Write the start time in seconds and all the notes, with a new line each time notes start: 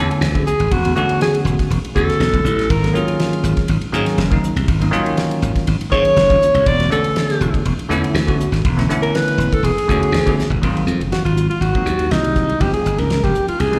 Already playing: D3 A3 B3 C#4
0.00 A4
0.11 ride
0.21 D2, snare, ride
0.35 D3 A3 B3 C#4 G#4, kick, ride
0.47 G#4, muted slap bass stroke, hi-hat pedal
0.60 G#1 C#4 A4, ride
0.71 E1 F#4, kick, ride
0.84 D3 A3 B3 C#4 F#4, ride
0.96 D3 A3 B3 C#4 F#4, hi-hat pedal
1.09 ride
1.21 G#4, snare, ride
1.34 ride
1.45 E1, hi-hat pedal
1.59 kick, snare, ride
1.70 E1, ride
1.83 muted slap bass stroke, ride
1.95 E2 D3 A3 B3 C#4 F#4 A4, kick, hi-hat pedal
2.10 snare, ride
2.20 B1, snare, ride
2.33 D3 A3 B3 C#4 E4, kick, ride
2.44 A1, hi-hat pedal
2.59 A4, snare, ride
2.70 G#1 A#4, kick, ride
2.82 D#3 F#3 A#3 C#4 F4, snare, ride
2.93 D#3 F#3 A#3 C#4 F4 G#4, hi-hat pedal
3.08 ride
3.20 snare, ride
3.33 ride
3.44 G#1, hi-hat pedal
3.57 kick, snare, ride
3.68 G#1, ride
3.81 muted slap bass stroke, ride
3.92 G#2 D#3 F#3 A#3 C#4 G#4, hi-hat pedal
4.06 snare, ride
4.18 F#1, snare, ride
4.30 D#3 F#3 A#3 C#4 D#4, kick, ride
4.43 muted slap bass stroke, hi-hat pedal
4.56 C2 C#4 F4, ride
4.68 G#1, kick, ride
4.80 D#3 F#3 A#3 C#4 D#4, ride
4.91 D#3 F#3 A#3 C#4 F4, hi-hat pedal
5.06 ride
5.17 snare, ride
5.31 ride
5.42 G#1, hi-hat pedal
5.56 kick, snare, ride
5.67 G#1, ride
5.80 muted slap bass stroke, ride
5.90 G#2 D#3 F#3 A#3 C#4 G#4 C#5, kick, hi-hat pedal
6.05 ride
6.16 F#1, snare, ride
6.29 D#3 F#3 A#3 C#4 F4, kick, ride
6.42 hi-hat pedal
6.54 C2, ride
6.66 E1 D5, kick, ride
6.79 D3 A3 B3 C#4 F#4, snare, ride
6.90 D3 A3 B3 C#4 A4, hi-hat pedal
7.04 ride
7.16 snare, ride
7.30 snare, ride
7.41 E1, hi-hat pedal
7.54 kick, ride
7.65 E1, ride
7.78 muted slap bass stroke, ride
7.89 E2 D3 A3 B3 C#4 E4, hi-hat pedal
8.04 ride
8.14 D2, snare, ride
8.27 D3 A3 B3 C#4 F#4, kick, ride
8.39 muted slap bass stroke, hi-hat pedal
8.52 G#1 F#4, snare, ride
8.65 E1, kick, ride
8.77 D3 A3 B3 C#4 E4, snare, ride
8.89 D3 A3 B3 C#4 E4, hi-hat pedal
9.02 A#4, ride
9.15 B4, snare, ride
9.28 ride
9.38 E1, hi-hat pedal
9.53 A4, kick, ride
9.63 E1 G#4, ride
9.76 muted slap bass stroke, ride
9.88 E2 D3 A3 B3 C#4 F#4, kick, hi-hat pedal
10.03 ride
10.12 D2, snare, ride
10.26 D3 A3 B3 C#4 G#4, kick, ride
10.37 muted slap bass stroke, snare, hi-hat pedal
10.50 G1 C#4 G#4, floor tom
10.62 G#1 D#3 F#3 A#3 C4 F4, kick, ride
10.77 ride
10.87 F2, hi-hat pedal
11.00 F#1 D#3 F#3 A#3 C4 F4, ride
11.12 F#4, snare, ride
11.25 G#1 F4, ride
11.37 hi-hat pedal
11.50 F4, ride
11.61 G#1 F#4, ride
11.74 D#3 F#3 A#3 C4 D#4, kick, ride
11.86 D#2, hi-hat pedal
11.99 ride
12.10 C2 D#3 F#3 A#3 C4 D#4 F4, snare, ride
12.24 ride
12.35 D#3 F#3 A#3 C4 F4, kick, snare, hi-hat pedal
12.49 C4 G#4, ride
12.59 G1 F3 G3 A#3 C#4 F4 G4, kick, ride
12.74 G#4, ride
12.86 G1, hi-hat pedal
12.97 C#2 F3 G3 A#3 C#4 D#4 A#4, ride
13.10 snare, ride
13.24 F1 G4, kick, ride
13.35 hi-hat pedal
13.48 F4, muted slap bass stroke, ride
13.60 C2 G#4, ride
13.72 E3 G#3 A#3 C4 D#4, ride